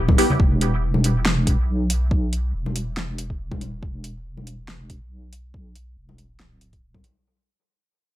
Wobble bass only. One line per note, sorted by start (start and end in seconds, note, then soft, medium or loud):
0.00 0.17 D1 medium
0.40 1.57 E1 medium
1.59 2.53 B1 medium
2.54 3.81 E1 medium
3.83 5.00 E1 medium
5.01 5.96 B1 medium
5.97 6.41 E1 medium
6.40 7.03 D1 medium